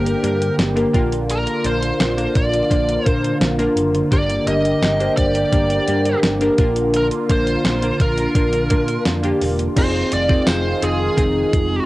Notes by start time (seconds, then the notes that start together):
Already playing: G1 D3 A#3 D4 G4 A#4 C5
0.06 closed hi-hat
0.23 G2 A#3 D4 G4 A#4, closed hi-hat
0.42 closed hi-hat
0.58 G1, snare, closed hi-hat
0.76 A#3 D4 G4 A#4, closed hi-hat
0.93 A#1 A#3 D4 F4 A#4, kick, closed hi-hat
1.12 closed hi-hat
1.30 A#4, closed hi-hat
1.47 closed hi-hat
1.64 A#1 A#3 D4 F4 A#4 C5, closed hi-hat
1.82 closed hi-hat
2.00 A#1, snare, closed hi-hat
2.17 A#3 D4 F4 A#4, closed hi-hat
2.35 A#1 D5, kick, closed hi-hat
2.54 closed hi-hat
2.70 A#1 A#3 D4 F4 C5, kick, closed hi-hat
2.89 closed hi-hat
3.05 A#2 A#3 D4 F4 A#4 C5, kick, closed hi-hat
3.24 closed hi-hat
3.41 A#1, snare, closed hi-hat
3.58 A#3 D4 F4 A#4, closed hi-hat
3.76 F#1, closed hi-hat
3.95 closed hi-hat
4.11 G1 A#3 D4 G4 A#4 D5, kick, closed hi-hat
4.30 closed hi-hat
4.46 G1 D3 A#3 G4 A#4 D#5, closed hi-hat
4.65 closed hi-hat
4.82 G1, snare, closed hi-hat
5.00 A#3 D4 G4 C5, closed hi-hat
5.17 G1 D5, kick, closed hi-hat
5.35 closed hi-hat
5.52 G1 A#3 D4 G4 A#4, kick, closed hi-hat
5.70 closed hi-hat
5.88 G2 A#3 D4 G4 A#4, closed hi-hat
6.05 closed hi-hat
6.23 G1, snare, closed hi-hat
6.41 A#3 D4 G4 A#4, closed hi-hat
6.58 A#1 A#3 D4 F4 A#4, kick, closed hi-hat
6.76 closed hi-hat
6.94 A#4, closed hi-hat
7.11 closed hi-hat
7.29 A#1 A#3 D4 F4 A#4 C5, kick, closed hi-hat
7.47 closed hi-hat
7.64 A#1, snare, closed hi-hat
7.82 A#3 D4 F4 A#4, closed hi-hat
8.00 A#1 A#4, kick, closed hi-hat
8.18 closed hi-hat
8.35 A#1 A#3 D4 F4 A#4, kick, closed hi-hat
8.53 closed hi-hat
8.70 A#2 A#3 D4 F4 A#4, kick, closed hi-hat
8.88 closed hi-hat
9.05 F2, snare, closed hi-hat
9.23 A#3 D4 F4 G4, closed hi-hat
9.41 E1, open hi-hat
9.59 closed hi-hat
9.76 F1 D#3 G#3 C4 D#4 F4 G#4 C5, kick, closed hi-hat, crash
10.12 F1 D5, closed hi-hat
10.29 C4 D#4 F4 G#4, kick
10.47 F1 C5, snare, closed hi-hat, tambourine
10.82 F1 C4 D#4 F4 G#4, closed hi-hat
11.17 F1 C4 D#4 F4 G#4, kick, closed hi-hat
11.53 F1, kick, closed hi-hat